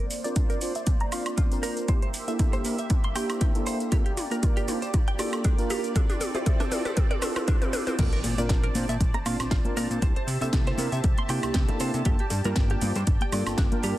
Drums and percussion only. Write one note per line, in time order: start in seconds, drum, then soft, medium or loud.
0.11 open hi-hat loud
0.11 cabasa medium
0.24 closed hi-hat soft
0.24 cabasa soft
0.36 kick loud
0.36 closed hi-hat medium
0.36 mid tom soft
0.36 cabasa soft
0.50 closed hi-hat soft
0.50 cabasa soft
0.61 open hi-hat medium
0.61 cabasa medium
0.75 closed hi-hat soft
0.75 cabasa soft
0.87 kick loud
0.87 closed hi-hat medium
0.87 mid tom soft
0.87 cabasa soft
1.00 closed hi-hat soft
1.12 open hi-hat loud
1.12 cabasa medium
1.12 high woodblock medium
1.26 closed hi-hat soft
1.26 cabasa soft
1.26 high woodblock medium
1.38 kick loud
1.38 closed hi-hat medium
1.38 mid tom medium
1.38 cabasa soft
1.52 closed hi-hat soft
1.52 cabasa soft
1.63 open hi-hat medium
1.63 cabasa medium
1.77 closed hi-hat soft
1.77 cabasa soft
1.88 kick loud
1.88 closed hi-hat medium
1.88 mid tom medium
1.88 cabasa soft
2.02 closed hi-hat soft
2.14 open hi-hat loud
2.14 cabasa medium
2.28 closed hi-hat soft
2.28 cabasa soft
2.39 kick loud
2.39 closed hi-hat medium
2.39 mid tom medium
2.39 cabasa soft
2.53 closed hi-hat soft
2.53 cabasa soft
2.65 open hi-hat medium
2.65 cabasa medium
2.79 closed hi-hat soft
2.79 cabasa soft
2.90 kick loud
2.90 closed hi-hat medium
2.90 mid tom medium
2.90 cabasa soft
3.04 closed hi-hat soft
3.16 open hi-hat loud
3.16 cabasa medium
3.16 high woodblock medium
3.30 closed hi-hat soft
3.30 cabasa soft
3.30 high woodblock medium
3.41 kick loud
3.41 closed hi-hat medium
3.41 mid tom medium
3.41 cabasa soft
3.55 closed hi-hat soft
3.55 cabasa soft
3.66 open hi-hat medium
3.66 cabasa medium
3.80 closed hi-hat soft
3.80 cabasa soft
3.92 kick loud
3.92 closed hi-hat medium
3.92 mid tom medium
3.92 cabasa soft
4.06 closed hi-hat soft
4.17 open hi-hat loud
4.17 mid tom medium
4.17 cabasa medium
4.31 closed hi-hat soft
4.31 cabasa soft
4.43 kick loud
4.43 closed hi-hat medium
4.43 mid tom medium
4.43 cabasa soft
4.57 closed hi-hat soft
4.57 cabasa soft
4.68 open hi-hat medium
4.68 mid tom medium
4.68 cabasa medium
4.82 closed hi-hat soft
4.82 cabasa soft
4.94 kick loud
4.94 closed hi-hat medium
4.94 mid tom medium
4.94 cabasa soft
5.08 closed hi-hat soft
5.19 open hi-hat loud
5.19 mid tom medium
5.19 cabasa medium
5.19 high woodblock medium
5.33 closed hi-hat soft
5.33 cabasa soft
5.33 high woodblock medium
5.44 kick loud
5.44 closed hi-hat medium
5.44 mid tom medium
5.44 cabasa soft
5.58 closed hi-hat soft
5.58 cabasa soft
5.70 open hi-hat loud
5.70 mid tom medium
5.70 cabasa medium
5.84 closed hi-hat soft
5.84 cabasa soft
5.96 kick loud
5.96 closed hi-hat medium
5.96 mid tom medium
5.96 cabasa soft
6.10 closed hi-hat soft
6.10 mid tom medium
6.10 cabasa soft
6.21 open hi-hat loud
6.21 mid tom medium
6.21 cabasa medium
6.35 closed hi-hat soft
6.35 mid tom medium
6.35 cabasa soft
6.46 kick loud
6.46 closed hi-hat medium
6.46 mid tom medium
6.46 cabasa soft
6.60 closed hi-hat soft
6.60 mid tom medium
6.60 cabasa soft
6.72 open hi-hat loud
6.72 mid tom loud
6.72 cabasa medium
6.85 closed hi-hat soft
6.85 mid tom medium
6.85 cabasa soft
6.97 kick loud
6.97 closed hi-hat medium
6.97 mid tom loud
6.97 cabasa soft
7.11 closed hi-hat soft
7.11 mid tom medium
7.22 open hi-hat loud
7.22 mid tom loud
7.22 cabasa medium
7.22 high woodblock medium
7.36 closed hi-hat soft
7.36 mid tom medium
7.36 cabasa soft
7.36 high woodblock medium
7.48 kick loud
7.48 closed hi-hat medium
7.48 mid tom loud
7.48 cabasa soft
7.62 closed hi-hat soft
7.62 mid tom loud
7.62 cabasa soft
7.73 open hi-hat medium
7.73 mid tom loud
7.73 cabasa medium
7.87 closed hi-hat soft
7.87 mid tom loud
7.87 cabasa soft
7.99 kick loud
7.99 closed hi-hat loud
7.99 crash loud
7.99 high conga medium
7.99 cabasa soft
8.13 closed hi-hat soft
8.24 open hi-hat loud
8.24 high bongo medium
8.24 cabasa medium
8.37 closed hi-hat soft
8.37 high conga medium
8.37 cabasa soft
8.49 kick loud
8.49 snare loud
8.49 closed hi-hat medium
8.49 high bongo medium
8.49 cabasa soft
8.64 closed hi-hat soft
8.75 open hi-hat medium
8.75 high conga medium
8.75 cabasa medium
8.88 closed hi-hat soft
8.88 high bongo medium
8.88 cabasa soft
9.01 kick loud
9.01 closed hi-hat loud
9.01 cabasa soft
9.14 closed hi-hat soft
9.14 high bongo medium
9.14 high conga medium
9.26 open hi-hat loud
9.26 cabasa medium
9.26 high woodblock medium
9.40 snare soft
9.40 closed hi-hat soft
9.40 cabasa soft
9.40 high woodblock medium
9.51 kick loud
9.51 snare loud
9.51 closed hi-hat medium
9.51 high bongo medium
9.51 cabasa soft
9.65 closed hi-hat soft
9.65 high conga medium
9.77 open hi-hat medium
9.77 high bongo medium
9.77 cabasa medium
9.91 closed hi-hat soft
9.91 cabasa soft
10.02 kick loud
10.02 closed hi-hat loud
10.02 high conga loud
10.02 cabasa soft
10.16 closed hi-hat soft
10.16 high bongo medium
10.28 open hi-hat loud
10.28 cabasa medium
10.41 closed hi-hat soft
10.41 high bongo medium
10.41 high conga medium
10.41 cabasa soft
10.53 kick loud
10.53 snare loud
10.53 closed hi-hat medium
10.53 cabasa soft
10.67 snare soft
10.67 closed hi-hat soft
10.78 open hi-hat medium
10.78 high bongo medium
10.78 high conga medium
10.78 cabasa medium
10.92 closed hi-hat soft
10.92 cabasa soft
11.04 kick loud
11.04 closed hi-hat medium
11.04 high bongo medium
11.04 cabasa soft
11.18 closed hi-hat soft
11.18 high conga medium
11.29 open hi-hat loud
11.29 cabasa medium
11.29 high woodblock medium
11.43 closed hi-hat soft
11.43 high bongo soft
11.43 cabasa soft
11.43 high woodblock medium
11.54 kick loud
11.54 snare loud
11.54 closed hi-hat medium
11.54 cabasa soft
11.68 closed hi-hat soft
11.68 high bongo medium
11.68 high conga medium
11.80 open hi-hat medium
11.80 cabasa medium
11.94 closed hi-hat soft
11.94 cabasa soft
12.05 kick loud
12.05 closed hi-hat medium
12.05 high bongo soft
12.05 high conga loud
12.05 cabasa soft
12.19 closed hi-hat soft
12.30 open hi-hat loud
12.30 high bongo medium
12.30 cabasa medium
12.44 closed hi-hat soft
12.44 high conga medium
12.44 cabasa soft
12.56 kick loud
12.56 snare loud
12.56 closed hi-hat medium
12.56 cabasa soft
12.70 closed hi-hat soft
12.70 high bongo soft
12.81 open hi-hat loud
12.81 high conga loud
12.81 cabasa medium
12.96 closed hi-hat soft
12.96 high bongo medium
12.96 cabasa soft
13.07 kick loud
13.07 closed hi-hat medium
13.07 cabasa soft
13.21 closed hi-hat soft
13.21 high conga medium
13.32 open hi-hat loud
13.32 high bongo soft
13.32 cabasa medium
13.32 high woodblock medium
13.46 snare soft
13.46 closed hi-hat soft
13.46 cabasa soft
13.46 high woodblock medium
13.58 kick loud
13.58 snare loud
13.58 closed hi-hat medium
13.58 high bongo medium
13.58 cabasa soft
13.72 closed hi-hat soft
13.72 high conga loud
13.83 open hi-hat medium
13.83 cabasa medium